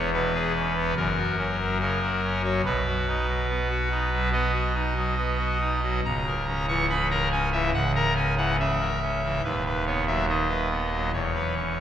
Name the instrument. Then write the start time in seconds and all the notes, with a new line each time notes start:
pipe organ
Already playing: E1 E2 B3
0.14 B2 B4
0.35 G#4
0.56 C#4
0.76 B3
0.97 F#1 F#2 A#4
1.18 F#4
1.38 C#4
1.60 F#3
1.81 C#3 A#4
2.02 F#4
2.24 C#4
2.44 F#3 C#5
2.65 B1 B2 B4
2.87 F#4
3.07 D#4
3.28 F#3
3.49 B3
3.70 F#4
3.91 D#4
4.12 F#3
4.32 B3 D#5
4.53 F#4
4.74 D#4
4.96 F#3
5.17 B3
5.38 F#4
5.60 D#4
5.82 F#3
6.05 C#1 C#2 A#5
6.26 A#4
6.48 C#4
6.68 E3 C#6
6.90 C#3 B5
7.10 A#4 A#5
7.31 C#4 G#5
7.52 E3 E5
7.73 C#1 C#2 F#5
7.95 A#4 A#5
8.16 C#4 G#5
8.37 E3 F#5
8.60 C#3 E5
8.81 A#4
9.02 C#4
9.24 E3
9.44 D#1 D#2 B4
9.66 B4
9.86 B3 C#5
10.06 F#3 E5
10.28 D#3 D#5
10.49 B4
10.70 B3
10.91 F#3
11.13 E1 E2 C#5
11.35 B4
11.56 C#4